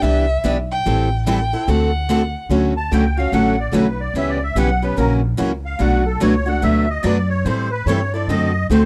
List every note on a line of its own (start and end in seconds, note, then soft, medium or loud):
0.02 0.38 C2 medium
0.02 0.25 E3 medium
0.02 0.25 G3 medium
0.02 0.25 B3 medium
0.02 0.26 D4 medium
0.02 0.25 E4 medium
0.02 0.25 G4 medium
0.02 0.25 B4 medium
0.02 0.44 E5 loud
0.44 0.79 B1 medium
0.44 0.56 E3 medium
0.44 0.56 G3 medium
0.44 0.56 B3 medium
0.44 0.56 D4 medium
0.44 0.56 E4 medium
0.44 0.57 G4 medium
0.44 0.56 B4 loud
0.71 1.23 G5 medium
0.86 1.52 A1 medium
0.86 1.07 E3 medium
0.86 1.08 G3 medium
0.86 1.08 C4 medium
0.86 1.08 E4 medium
0.86 1.08 A4 medium
1.27 1.39 E3 medium
1.27 1.39 G3 medium
1.27 1.39 C4 medium
1.27 1.39 E4 medium
1.27 1.39 A4 loud
1.27 1.70 G5 medium
1.53 1.68 C4 soft
1.53 1.68 E4 soft
1.53 1.68 A4 medium
1.68 2.34 D2 medium
1.68 1.90 D3 medium
1.68 1.90 A3 medium
1.68 1.90 C4 medium
1.68 1.91 F#4 medium
1.68 1.91 A4 medium
1.68 2.36 F#5 medium
2.09 2.21 D3 medium
2.09 2.21 A3 medium
2.09 2.21 C4 medium
2.09 2.22 F#4 medium
2.09 2.22 A4 loud
2.49 2.90 D2 medium
2.49 2.72 D3 medium
2.49 2.73 F#3 medium
2.49 2.73 A3 medium
2.49 2.73 C#4 medium
2.49 2.73 F#4 medium
2.49 2.73 A4 medium
2.77 2.92 A5 medium
2.91 3.31 C#2 medium
2.91 3.04 D3 medium
2.91 3.04 F#3 medium
2.91 3.04 A3 medium
2.91 3.04 C#4 medium
2.91 3.04 F#4 medium
2.91 3.04 A4 medium
2.91 3.17 G5 medium
3.17 3.33 A3 soft
3.17 3.32 C#4 soft
3.17 3.32 F#4 medium
3.17 3.32 F5 medium
3.32 3.73 A1 medium
3.32 3.55 D3 medium
3.32 3.55 F#3 medium
3.32 3.55 A3 medium
3.32 3.55 C#4 medium
3.32 3.56 F#4 medium
3.32 3.55 A4 medium
3.32 3.59 F#5 medium
3.59 3.74 D5 medium
3.73 4.13 B1 medium
3.73 3.85 D3 medium
3.73 3.86 F#3 medium
3.73 3.86 A3 medium
3.73 3.86 C#4 medium
3.73 3.86 F#4 medium
3.73 3.86 A4 medium
3.73 4.00 B4 medium
4.00 4.15 D5 medium
4.14 4.55 C#2 medium
4.14 4.37 C#3 medium
4.14 4.38 E3 medium
4.14 4.37 G3 medium
4.14 4.38 B3 medium
4.14 4.38 C#4 medium
4.14 4.38 E4 medium
4.14 4.38 G4 medium
4.14 4.38 B4 medium
4.14 4.30 E5 medium
4.29 4.43 D5 medium
4.43 4.57 E5 medium
4.55 4.96 B1 medium
4.55 4.68 C#3 medium
4.55 4.69 E3 medium
4.55 4.69 G3 medium
4.55 4.69 B3 medium
4.55 4.69 C#4 loud
4.55 4.69 E4 medium
4.55 4.69 G4 medium
4.55 4.69 B4 loud
4.55 4.84 F#5 medium
4.82 4.97 B3 soft
4.82 4.97 C#4 soft
4.82 4.97 G4 medium
4.82 4.97 B4 medium
4.96 5.38 A#1 medium
4.96 5.20 C#3 medium
4.96 5.20 E3 medium
4.96 5.19 F#3 medium
4.96 5.20 A#3 medium
4.96 5.20 C#4 medium
4.96 5.20 E4 medium
4.96 5.21 F#4 medium
4.96 5.13 A#4 medium
4.96 5.20 A#4 medium
5.37 5.80 C#2 medium
5.37 5.50 C#3 medium
5.37 5.51 E3 medium
5.37 5.51 F#3 medium
5.37 5.51 A#3 medium
5.37 5.51 C#4 medium
5.37 5.51 E4 medium
5.37 5.51 F#4 medium
5.37 5.51 A#4 medium
5.65 5.80 F5 medium
5.79 6.21 B1 medium
5.79 6.02 B2 medium
5.79 6.02 F#3 medium
5.79 6.02 A3 medium
5.79 6.02 D4 medium
5.79 6.03 F#4 medium
5.79 6.04 B4 medium
5.79 6.07 F#5 medium
6.06 6.21 A4 medium
6.20 6.63 C#2 medium
6.20 6.33 B2 medium
6.20 6.33 F#3 medium
6.20 6.33 A3 medium
6.20 6.33 D4 medium
6.20 6.34 F#4 loud
6.20 6.34 B4 loud
6.20 6.48 C#5 medium
6.46 6.61 A3 soft
6.46 6.62 D4 soft
6.46 6.62 F#4 medium
6.46 6.63 F#5 medium
6.62 7.03 D2 medium
6.62 6.85 B2 medium
6.62 6.85 F#3 medium
6.62 6.85 A3 medium
6.62 6.85 D4 medium
6.62 6.85 F#4 medium
6.62 6.86 B4 medium
6.62 6.89 E5 medium
6.90 7.05 D#5 medium
7.02 7.44 F#2 medium
7.02 7.15 B2 medium
7.02 7.16 F#3 medium
7.02 7.16 A3 medium
7.02 7.16 D4 medium
7.02 7.16 F#4 loud
7.02 7.29 D5 medium
7.07 7.17 B4 medium
7.30 7.45 C#5 medium
7.44 7.85 A2 medium
7.44 7.68 E3 medium
7.44 7.68 G3 medium
7.44 7.68 C4 medium
7.44 7.68 E4 medium
7.44 7.68 A4 medium
7.44 7.71 C5 medium
7.71 7.86 B4 medium
7.86 8.27 G2 medium
7.86 7.99 E3 medium
7.86 7.99 G3 medium
7.86 8.00 C4 medium
7.86 8.00 E4 medium
7.86 8.00 A4 medium
7.86 8.12 C#5 medium
8.13 8.29 C4 soft
8.13 8.29 E4 soft
8.13 8.28 A4 soft
8.13 8.28 D5 medium
8.27 8.68 F#2 medium
8.27 8.51 D3 medium
8.27 8.51 A3 medium
8.27 8.51 C4 medium
8.27 8.51 F#4 medium
8.27 8.51 A4 medium
8.27 8.67 D#5 medium
8.70 8.85 D2 medium
8.70 8.82 D3 medium
8.70 8.82 A3 medium
8.70 8.82 C4 medium
8.70 8.82 F#4 medium
8.70 8.83 A4 loud
8.70 8.85 C5 medium